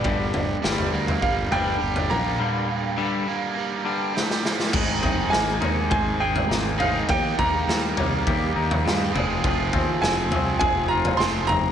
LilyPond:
<<
  \new Staff \with { instrumentName = "Upright piano" } { \time 4/4 \key g \phrygian \tempo 4 = 102 d''2 f''8 g''4 bes''8~ | bes''2. r4 | r4 aes''4 aes''8 g''4 f''8 | g''8 bes''4. r2 |
r4 aes''4 aes''8 bes''8 c'''8 bes''8 | }
  \new Staff \with { instrumentName = "Overdriven electric guitar" } { \time 4/4 \key g \phrygian g,4 g8 bes8 g8 d'8 g'8 bes8 | g,4 g8 bes8 g8 d'8 g'8 bes8 | <aes, ees aes c' ees' aes'>2.~ <aes, ees aes c' ees' aes'>8 <aes, ees aes c' ees' aes'>8 | <ees g bes ees' g'>2.~ <ees g bes ees' g'>8 <f c' f' aes'>8~ |
<f c' f' aes'>2. <f c' f' aes'>8 r8 | }
  \new Staff \with { instrumentName = "Clean electric guitar" } { \clef bass \time 4/4 \key g \phrygian <g, d g>8 <g, d>8 <g, d g>8 <g, d>8 <g, d>8 <g, d g>8 <g, d>8 <g, d>8 | <g, d g>8 <g, d>8 <g, d g>8 <g, d>8 <g, d>8 <g, d g>8 <g, d>8 <g, d>8 | aes8 ees'8 bes8 ees'8 c''8 aes'8 bes8 ees'8 | ees8 bes8 g8 bes8 g'8 ees'8 g8 f8 |
f8 c'8 f8 c'8 aes'8 f'8 f8 c'8 | }
  \new Staff \with { instrumentName = "Fingered electric bass" } { \clef bass \time 4/4 \key g \phrygian g,,4 g,,8 d,8 g,,8 g,,8 g,,8 bes,,8 | r1 | aes,,8 f,,8 aes,,8 ees,8 aes,,4 aes,,4 | ees,8 ees,8 ees,8 c,8 ees,8 ees,8 g,8 f,,8 |
f,,8 ees,8 f,,8 c,8 f,,4 f,,4 | }
  \new DrumStaff \with { instrumentName = "Drums" } \drummode { \time 4/4 <bd tomfh>8 tomfh8 sn16 tomfh8 tomfh16 bd8 tomfh8 r16 tomfh16 toml8 | r4 r4 r4 sn16 sn16 sn16 sn16 | <cymc bd tomfh>8 <bd tomfh>8 sn8 tomfh8 <bd tomfh>8. tomfh16 sn8 tomfh8 | <bd tomfh>8 <bd tomfh>8 sn8 tomfh8 <bd tomfh>8. tomfh16 sn8 tomfh8 |
<bd tomfh>8 <bd tomfh>8 sn8 tomfh8 <bd tomfh>8. tomfh16 sn8 tomfh8 | }
>>